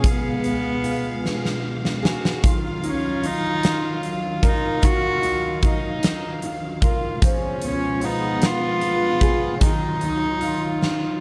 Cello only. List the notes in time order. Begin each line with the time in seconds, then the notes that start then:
0.07 B3
2.85 C#4
3.25 D#4
4.45 D#4
4.84 F#4
7.65 C#4
8.05 D#4
8.45 F4
9.63 D#4